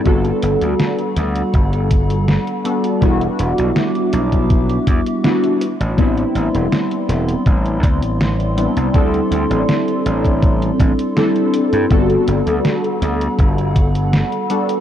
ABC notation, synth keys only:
X:1
M:4/4
L:1/8
Q:1/4=81
K:G
V:1 name="Synth keys"
[G,B,DFA]6- [G,B,DFA] [G,B,DFA] | [G,B,DEF]6 [G,B,DEF] z | [G,B,CDE]6- [G,B,CDE] [G,B,CDE] | [G,CDEA]6 [G,CDEA] z |
[G,B,DFA]6- [G,B,DFA] [G,B,DFA] |]